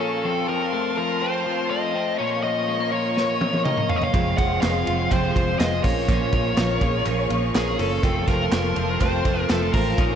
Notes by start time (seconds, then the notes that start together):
Already playing: A#2 F3 A#3 A#4 C#5 F5 C#6
0.00 C#4 A4
0.24 F2 C4 C5 A5 C6
0.48 F3 A#4
0.73 A3
0.97 F3 A#4
1.21 C4 C5
1.46 F3
1.70 A3 D#5
1.95 C4
2.19 A#2 C#4 A#4 C#5 C#6
2.43 F3 D#5
2.68 G#3
2.80 A#3
2.92 F3 C#5
3.16 C#4, snare
3.41 F3, high tom
3.53 high tom
3.65 A#3 D#5, mid tom
3.77 mid tom
3.89 C#4 F5, floor tom
3.96 D#5
4.02 F5, floor tom
4.14 F1 F2 C3 F3 G#3 C4 F4 G#4 C5 F5 C6, kick, ride
4.37 F1 F3 G#3 C4 F4 F#5, kick, ride
4.61 F1 F3 G#3 C4 F4 F5, snare, clap, ride
4.86 F1 F3 G#3 C4 F4, ride
5.11 F1 F2 C3 F3 G#3 C4 F4 C5, kick, clap, ride
5.35 F1 F3 G#3 C4 F4, kick, ride
5.59 F1 F3 G#3 C4 F4 D#5, snare, clap, ride
5.84 A#1 A#2 A#3 C#4 F4 A#4 C#5 C#6, kick, open hi-hat, ride
6.08 A#2 F3 A#3 C#4 F4, kick, hi-hat pedal, ride
6.33 A#1 F3 A#3 C#4 F4, kick, ride
6.57 A#1 F3 A#3 C#4 F4, snare, clap, ride
6.81 A#1 F3 A#3 C#4 F4 G#4, kick, ride
7.05 A#1 A#2 F3 A#3 C#4 F4 A#4, clap, ride
7.30 A#1 F3 A#3 C#4 F4, ride
7.55 A#1 F3 A#3 C#4 F4 G#4, snare, clap, ride
7.79 F#1 A#3 C#4 F4 A4, open hi-hat, ride
8.03 F1 F2 C3 F3 A3 C4 F4 A4 C5 A5 C6, kick, hi-hat pedal, ride
8.27 F1 F3 A3 C4 F4 A#4, kick, snare, ride
8.52 F1 F3 A3 C4 F4, snare, clap, ride
8.76 F1 F3 A3 C4 F4, ride
9.00 F1 F2 C3 F3 A3 C4 F4 C5, kick, clap, ride
9.24 F1 F3 A3 C4 F4, kick, ride
9.49 F1 F3 A3 C4 F4 A4, snare, clap, ride
9.73 A1 F3 A3 C4 F4 A#4, kick, open hi-hat, ride
9.91 F4
9.98 A#1 A#2 F3 A#3 C#4 D#4 F4 A#4 C#5 C#6, kick, hi-hat pedal, ride